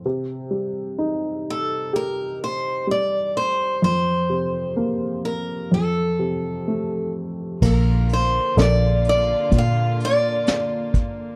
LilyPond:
<<
  \new Staff \with { instrumentName = "Steel-string acoustic guitar" } { \time 4/4 \key bes \major \tempo 4 = 63 r4. a'8 bes'8 c''8 d''8 c''8 | c''4. bes'8 a'4. r8 | bes'8 c''8 d''8 d''8 f''8 d''4. | }
  \new Staff \with { instrumentName = "String section" } { \time 4/4 \key bes \major r1 | r1 | <d bes f'>1 | }
  \new Staff \with { instrumentName = "Upright piano" } { \time 4/4 \key bes \major c8 g8 ees'4 g'4 g4 | f,8 c8 bes4 f,8 c8 a4 | bes4 <a' bes' d''>2. | }
  \new Staff \with { instrumentName = "Fingered electric bass" } { \clef bass \time 4/4 \key bes \major r1 | r1 | bes,,4 bes,,4 bes,2 | }
  \new DrumStaff \with { instrumentName = "Drums" } \drummode { \time 4/4 r4 r4 r4 r4 | r4 r4 r4 r4 | <cymc bd>8 hh8 <hh sn>8 hh8 <hh bd>8 hh8 <hh sn>8 <hh bd>8 | }
>>